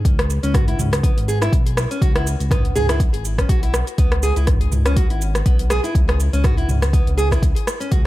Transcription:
0.05 0.39 C#2 loud
0.05 kick loud
0.05 closed hi-hat medium
0.05 shaker soft
0.19 cross-stick loud
0.19 closed hi-hat soft
0.30 shaker medium
0.43 0.75 C#2 medium
0.43 0.53 C#4 medium
0.43 closed hi-hat soft
0.43 shaker medium
0.54 0.66 F#4 medium
0.54 kick loud
0.54 cross-stick medium
0.54 closed hi-hat medium
0.54 mid tom medium
0.54 shaker soft
0.68 0.78 E4 medium
0.68 closed hi-hat soft
0.79 1.13 C#2 medium
0.79 mid tom medium
0.79 shaker medium
0.93 cross-stick loud
0.93 closed hi-hat soft
0.93 shaker medium
1.03 1.16 B3 medium
1.03 kick loud
1.03 closed hi-hat medium
1.03 shaker soft
1.17 1.49 G#1 medium
1.17 closed hi-hat soft
1.28 1.40 G#4 loud
1.28 shaker medium
1.42 1.52 E4 medium
1.42 cross-stick medium
1.42 closed hi-hat soft
1.42 shaker medium
1.53 1.86 B1 medium
1.53 kick loud
1.53 closed hi-hat medium
1.53 shaker soft
1.67 closed hi-hat soft
1.77 cross-stick loud
1.77 shaker medium
1.91 2.01 C#4 medium
1.91 closed hi-hat soft
1.91 shaker soft
2.02 2.36 C#2 loud
2.02 2.14 F#4 medium
2.02 kick loud
2.02 closed hi-hat medium
2.02 shaker soft
2.15 2.26 E4 medium
2.15 cross-stick loud
2.15 closed hi-hat soft
2.27 shaker loud
2.40 2.72 C#2 medium
2.40 closed hi-hat soft
2.40 shaker medium
2.51 2.64 B3 medium
2.51 kick loud
2.51 cross-stick medium
2.51 closed hi-hat medium
2.51 mid tom medium
2.51 shaker soft
2.65 closed hi-hat soft
2.75 3.09 C#2 medium
2.75 2.88 G#4 loud
2.75 mid tom medium
2.75 shaker medium
2.89 3.00 E4 medium
2.89 cross-stick loud
2.89 closed hi-hat soft
2.89 shaker medium
3.00 kick loud
3.00 closed hi-hat medium
3.00 shaker soft
3.14 3.46 G#1 medium
3.14 closed hi-hat soft
3.25 shaker loud
3.38 3.48 C#4 medium
3.38 kick medium
3.38 cross-stick medium
3.38 closed hi-hat soft
3.38 shaker medium
3.49 3.83 B1 medium
3.49 3.61 F#4 medium
3.49 kick loud
3.49 closed hi-hat medium
3.49 shaker soft
3.63 3.73 E4 medium
3.63 closed hi-hat soft
3.74 cross-stick loud
3.74 shaker loud
3.87 closed hi-hat soft
3.87 shaker medium
3.98 4.32 C#2 loud
3.98 4.11 B3 medium
3.98 kick loud
3.98 closed hi-hat medium
3.98 shaker soft
4.12 cross-stick loud
4.12 closed hi-hat soft
4.23 4.35 G#4 loud
4.23 shaker loud
4.36 4.69 C#2 medium
4.36 4.47 E4 medium
4.36 closed hi-hat soft
4.36 shaker medium
4.47 kick loud
4.47 cross-stick medium
4.47 closed hi-hat medium
4.47 mid tom medium
4.47 shaker soft
4.61 closed hi-hat soft
4.72 5.06 C#2 medium
4.72 mid tom medium
4.72 shaker loud
4.86 4.96 C#4 medium
4.86 cross-stick loud
4.86 closed hi-hat soft
4.86 shaker medium
4.96 5.09 F#4 medium
4.96 kick loud
4.96 closed hi-hat medium
4.96 shaker soft
5.10 5.42 G#1 medium
5.10 5.21 E4 medium
5.10 closed hi-hat soft
5.21 shaker loud
5.35 cross-stick medium
5.35 closed hi-hat soft
5.35 shaker medium
5.46 5.80 B1 medium
5.46 5.59 B3 medium
5.46 kick loud
5.46 closed hi-hat medium
5.46 shaker soft
5.59 closed hi-hat soft
5.70 5.83 G#4 loud
5.70 cross-stick loud
5.70 shaker loud
5.84 5.94 E4 medium
5.84 closed hi-hat soft
5.84 shaker medium
5.95 6.29 C#2 loud
5.95 kick loud
5.95 closed hi-hat medium
5.95 shaker soft
6.09 cross-stick medium
6.09 closed hi-hat soft
6.20 shaker loud
6.33 6.65 C#2 medium
6.33 6.43 C#4 medium
6.33 closed hi-hat soft
6.33 shaker medium
6.44 6.56 F#4 medium
6.44 kick loud
6.44 cross-stick medium
6.44 closed hi-hat medium
6.44 mid tom medium
6.44 shaker soft
6.57 6.68 E4 medium
6.57 closed hi-hat soft
6.69 7.03 C#2 medium
6.69 mid tom medium
6.69 shaker medium
6.82 cross-stick medium
6.82 closed hi-hat soft
6.82 shaker medium
6.93 7.06 B3 medium
6.93 kick loud
6.93 closed hi-hat medium
6.93 shaker soft
7.07 7.39 C#2 loud
7.07 closed hi-hat soft
7.18 7.30 G#4 loud
7.18 shaker loud
7.31 7.42 E4 medium
7.31 kick medium
7.31 cross-stick medium
7.31 closed hi-hat soft
7.31 shaker medium
7.42 7.54 C#2 medium
7.42 kick loud
7.42 closed hi-hat medium
7.42 shaker soft
7.56 closed hi-hat soft
7.67 cross-stick medium
7.67 shaker medium
7.80 7.90 C#4 medium
7.80 closed hi-hat soft
7.80 shaker medium
7.91 8.07 C#2 loud
7.91 8.04 F#4 medium
7.91 kick loud
7.91 closed hi-hat medium
7.91 shaker soft

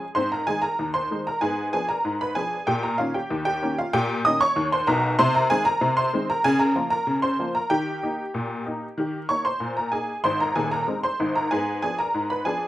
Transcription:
0.00 0.14 G#4 medium
0.15 0.42 G#2 loud
0.15 0.34 C4 medium
0.15 0.30 C5 medium
0.15 0.31 C6 loud
0.32 0.47 A#4 medium
0.32 0.47 A#5 medium
0.47 0.65 D#3 medium
0.47 0.65 G#3 soft
0.47 0.65 D#4 medium
0.47 0.62 G#4 medium
0.47 0.62 G#5 loud
0.62 0.92 A#4 medium
0.62 0.87 A#5 loud
0.79 1.05 D#2 medium
0.94 1.24 C5 medium
0.94 1.19 C6 medium
1.11 1.28 D#3 medium
1.11 1.28 G#3 medium
1.11 1.28 D#4 medium
1.27 1.42 A#4 medium
1.27 1.42 A#5 medium
1.41 1.68 G#2 medium
1.41 1.60 B3 medium
1.41 1.71 G#4 medium
1.41 1.66 G#5 loud
1.73 1.90 F3 medium
1.73 1.91 B3 medium
1.73 1.91 D4 medium
1.73 1.88 G#4 medium
1.73 1.89 G#5 medium
1.89 2.19 A#4 medium
1.89 2.14 A#5 medium
2.05 2.31 G#2 medium
2.21 2.36 B4 medium
2.21 2.36 B5 medium
2.35 2.53 F3 medium
2.35 2.53 B3 medium
2.35 2.54 D4 medium
2.35 2.66 G#4 medium
2.35 2.65 G#5 loud
2.67 2.94 A#2 loud
2.67 2.82 G4 medium
2.67 2.83 G5 loud
2.83 2.98 A#4 medium
2.83 2.99 A#5 loud
2.98 3.16 D#3 medium
2.98 3.17 A#3 medium
2.98 3.17 C#4 medium
2.98 3.14 F4 medium
2.98 3.14 F5 medium
3.14 3.44 G4 medium
3.14 3.40 G5 medium
3.30 3.57 D#2 medium
3.45 3.75 G4 medium
3.45 3.75 G5 loud
3.62 3.79 D#3 medium
3.62 3.80 A#3 medium
3.62 3.80 C#4 medium
3.78 3.93 F4 medium
3.78 3.94 F5 loud
3.93 4.20 A#2 loud
3.93 4.23 G4 medium
3.93 4.18 G5 loud
4.25 4.43 D#3 medium
4.25 4.43 A#3 medium
4.25 4.43 C#4 medium
4.25 4.40 D#5 medium
4.25 4.40 D#6 loud
4.41 4.70 C#5 medium
4.41 4.66 C#6 loud
4.56 4.83 D#2 medium
4.72 4.87 C5 medium
4.72 4.88 C6 loud
4.87 5.13 B1 loud
4.87 5.13 B2 medium
4.87 5.17 A#4 medium
4.87 5.17 A#5 loud
5.19 5.45 C3 loud
5.19 5.34 C5 loud
5.19 5.34 C6 loud
5.35 5.50 A#4 medium
5.35 5.50 A#5 loud
5.50 5.68 D#3 medium
5.50 5.68 G#3 medium
5.50 5.68 C4 medium
5.50 5.65 G#4 medium
5.50 5.66 G#5 loud
5.65 5.95 A#4 medium
5.65 5.90 A#5 loud
5.81 6.08 C3 loud
5.97 6.27 C5 medium
5.97 6.27 C6 loud
6.13 6.30 D#3 medium
6.13 6.31 G#3 medium
6.13 6.31 C4 medium
6.30 6.44 A#4 medium
6.30 6.45 A#5 loud
6.44 6.71 C#3 loud
6.44 6.60 G#4 loud
6.44 6.60 G#5 loud
6.59 6.90 A#4 medium
6.59 6.89 A#5 loud
6.75 6.93 F3 medium
6.75 6.93 A#3 medium
6.75 6.93 F4 medium
6.90 7.21 A#4 medium
6.90 7.16 A#5 loud
7.07 7.34 C#3 medium
7.22 7.53 C5 medium
7.22 7.48 C6 loud
7.39 7.57 F3 medium
7.39 7.57 A#3 medium
7.39 7.57 F4 medium
7.55 7.71 A#4 medium
7.55 7.71 A#5 loud
7.70 7.98 D#3 medium
7.70 8.98 G4 medium
7.70 8.97 G5 loud
8.03 8.20 A#3 medium
8.03 8.20 D#4 medium
8.34 8.61 A#2 medium
8.66 8.84 A#3 medium
8.66 8.84 D#4 medium
8.98 9.25 D#3 medium
8.98 9.17 G4 medium
9.29 9.47 A#3 soft
9.29 9.47 D#4 medium
9.29 9.45 C#5 medium
9.29 9.45 C#6 medium
9.45 9.75 C5 medium
9.45 9.71 C6 medium
9.60 9.88 A#2 medium
9.77 9.92 A#4 medium
9.77 9.93 A#5 medium
9.92 10.10 A#3 medium
9.92 10.10 D#4 medium
9.92 10.23 G#4 medium
9.92 10.18 G#5 medium
10.24 10.50 G#1 medium
10.24 10.50 G#2 medium
10.24 10.40 C5 medium
10.24 10.40 C6 loud
10.40 10.56 A#4 medium
10.40 10.57 A#5 loud
10.55 10.82 D#1 medium
10.55 10.82 D#2 medium
10.55 10.71 G#4 medium
10.55 10.72 G#5 medium
10.71 11.02 A#4 medium
10.71 10.97 A#5 loud
10.88 11.05 G#3 medium
10.88 11.05 C4 medium
10.88 11.05 D#4 medium
11.03 11.34 C5 medium
11.03 11.34 C6 medium
11.20 11.45 G#1 medium
11.20 11.45 G#2 medium
11.36 11.51 A#4 medium
11.36 11.51 A#5 medium
11.51 11.79 G#2 loud
11.51 11.70 B3 medium
11.51 11.81 G#4 medium
11.51 11.81 G#5 loud
11.82 12.00 F3 medium
11.82 12.01 B3 medium
11.82 12.01 D4 medium
11.82 11.98 G#4 medium
11.82 11.99 G#5 loud
11.99 12.29 A#4 medium
11.99 12.29 A#5 medium
12.14 12.41 G#2 medium
12.30 12.46 B4 medium
12.30 12.46 B5 medium
12.45 12.63 F3 medium
12.45 12.63 B3 medium
12.45 12.64 D4 medium
12.45 12.68 G#4 medium
12.45 12.68 G#5 loud

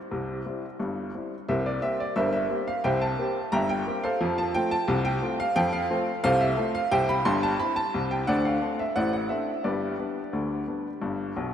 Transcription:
0.00 0.76 G4 medium
0.00 0.75 C5 medium
0.11 0.40 C2 medium
0.11 0.40 C3 medium
0.46 0.64 G3 soft
0.46 0.65 C4 soft
0.46 0.65 E4 soft
0.80 1.09 G1 medium
0.80 1.09 G2 medium
1.14 1.33 G3 soft
1.14 1.33 C4 soft
1.14 1.34 E4 soft
1.49 1.78 C2 medium
1.49 1.78 C3 medium
1.49 1.65 A#4 medium
1.49 1.65 C5 medium
1.49 1.66 E5 medium
1.66 1.83 D5 medium
1.82 2.01 A#3 medium
1.82 2.02 C4 medium
1.82 2.02 G4 medium
1.82 1.99 E5 medium
2.00 2.17 D5 medium
2.16 2.45 G1 medium
2.16 2.45 G2 medium
2.16 2.33 A#4 medium
2.16 2.33 C5 medium
2.16 2.31 E5 loud
2.33 2.60 E5 medium
2.50 2.69 A#3 soft
2.50 2.69 C4 medium
2.50 2.69 G4 medium
2.68 2.85 F5 medium
2.84 3.14 C2 medium
2.84 3.14 C3 medium
2.84 3.01 C5 medium
2.84 3.01 E5 medium
2.84 3.01 G5 loud
3.01 3.50 A5 medium
3.19 3.37 A#3 medium
3.19 3.38 C4 medium
3.19 3.38 G4 medium
3.52 3.82 G1 medium
3.52 3.82 G2 medium
3.52 3.69 E5 medium
3.52 3.68 G5 medium
3.52 3.69 A#5 loud
3.69 4.02 G5 loud
3.87 4.06 A#3 medium
3.87 4.06 C4 medium
3.87 4.06 G4 medium
4.04 4.36 A4 medium
4.04 4.36 C5 medium
4.04 4.36 F5 loud
4.21 4.50 F2 medium
4.21 4.50 F3 loud
4.38 4.55 A5 medium
4.55 4.73 A3 medium
4.55 4.74 C4 medium
4.55 4.74 F4 medium
4.55 4.72 G5 loud
4.71 4.99 A5 loud
4.88 5.17 C2 loud
4.88 5.17 C3 loud
5.05 5.32 G5 loud
5.22 5.41 A3 medium
5.22 5.41 C4 medium
5.22 5.42 F4 medium
5.40 5.57 F5 loud
5.56 5.85 F2 medium
5.56 5.85 F3 loud
5.56 5.73 G5 loud
5.73 6.14 F5 loud
5.90 6.09 A3 medium
5.90 6.09 C4 medium
5.90 6.09 F4 medium
6.24 6.53 C2 loud
6.24 6.53 C3 loud
6.24 6.40 A4 medium
6.24 6.40 C5 loud
6.24 6.41 F5 loud
6.41 6.73 E5 loud
6.57 6.76 A3 medium
6.57 6.77 C4 medium
6.57 6.77 F4 medium
6.75 6.92 F5 loud
6.91 7.19 C2 medium
6.91 7.19 C3 medium
6.91 7.08 C5 medium
6.91 7.08 E5 medium
6.91 7.09 G5 loud
7.09 7.26 B5 loud
7.25 7.53 G1 loud
7.25 7.53 G2 loud
7.25 7.43 C6 loud
7.43 7.60 A5 loud
7.60 7.78 C4 medium
7.60 7.78 E4 medium
7.60 7.77 B5 loud
7.76 8.04 A5 loud
7.94 8.21 C2 medium
7.94 8.21 C3 medium
8.11 8.28 G5 medium
8.27 8.57 D2 medium
8.27 8.57 D3 loud
8.27 8.44 C5 medium
8.27 8.44 D5 medium
8.27 8.45 F#5 loud
8.45 8.77 F5 medium
8.62 8.81 A3 soft
8.62 8.81 C4 medium
8.62 8.81 D4 medium
8.79 8.96 E5 medium
8.96 9.25 A1 medium
8.96 9.25 A2 medium
8.96 9.12 C5 medium
8.96 9.12 D5 medium
8.96 9.12 F#5 loud
9.13 9.30 F#5 medium
9.29 9.49 A3 soft
9.29 9.49 C4 soft
9.29 9.49 D4 soft
9.29 9.62 E5 medium
9.64 9.94 G1 medium
9.64 9.94 G2 medium
9.64 11.54 G4 medium
9.64 11.54 B4 medium
9.64 11.54 D5 medium
9.99 10.18 G3 soft
9.99 10.18 B3 soft
9.99 10.19 D4 soft
10.33 10.62 D2 medium
10.33 10.62 D3 medium
10.67 10.86 G3 soft
10.67 10.87 B3 soft
10.67 10.87 D4 soft
11.02 11.31 G1 medium
11.02 11.31 G2 medium
11.36 11.54 B1 medium
11.36 11.54 B2 medium

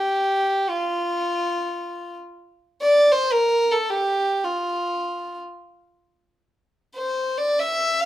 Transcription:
0.00 0.71 G4 medium
0.69 2.15 F4 medium
2.82 3.13 D5 medium
3.11 3.33 C5 medium
3.32 3.73 A#4 medium
3.71 3.91 A4 medium
3.89 4.46 G4 medium
4.44 5.38 F4 medium
6.95 7.39 C5 medium
7.37 7.60 D5 medium
7.59 8.02 E5 medium
8.00 8.05 F5 medium

